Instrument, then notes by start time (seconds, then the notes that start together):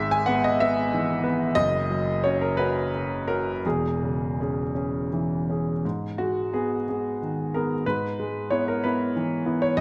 grand piano
Already playing: G#1 G#2 G#3 E5
0.11 G#5
0.26 B3 B4 F#5
0.44 D#5
0.60 B3 B4 E5
0.94 E3
1.24 B3 B4
1.55 F#1 F#2 D#5
1.90 F#3
2.24 C#4 F#4 C#5
2.41 A#4
2.57 C#4 F#4 B4
2.94 C#3
3.28 C#4 F#4 A#4
3.65 E1 E2 G#4
4.03 C#3
4.40 C#4 G#4
4.75 C#4 G#4
5.13 E3
5.50 C#4 G#4
5.85 G#2
6.18 G#3 F#4
6.53 B3 G#4
6.89 B3 G#4
7.22 D#3
7.54 B3 G#4 A#4
7.86 G#2 B4
8.20 G#3
8.51 B3 E4 C#5
8.68 A#4
8.84 B3 E4 B4
9.16 E3
9.46 B3 E4
9.62 C#5
9.77 F#2 D#5